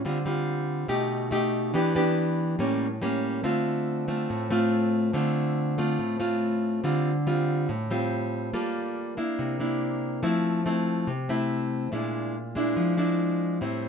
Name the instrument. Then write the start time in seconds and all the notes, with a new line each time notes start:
nylon-string guitar
0.05 D3 G3 C4 F4
0.26 G3 C4 F4
0.88 B2 A3 D#4 G4
1.31 A3 D#4 G4
1.74 E3 B3 D4 G4
1.95 B3 D4 G4
2.59 A2 G3 A#3 C#4
3.02 G3 A#3 C#4
3.44 D3 A3 C4 F4
4.08 A3 C4 F4
4.30 A2
4.50 A3 C4 F4
5.13 D3 A3 C4 F4
5.78 A3 C4 F4
5.99 A2
6.20 A3 C4 F4
6.84 D3 G3 C4 F4
7.27 G3 C4 F4
7.69 A2
7.91 G3 C4 F4
8.53 G3 A#3 F4 A4
9.17 A#3 D4 E4
9.39 C3
9.60 A#3 D4 E4
10.23 F3 A3 C4 E4
10.66 A3 C4 E4
11.07 C3
11.29 A3 C4 E4
11.92 A#2 G#3 D4 E4
12.55 G#3 D4 E4
12.76 F3
12.97 G#3 D4 E4
13.61 A2 G3 C4 E4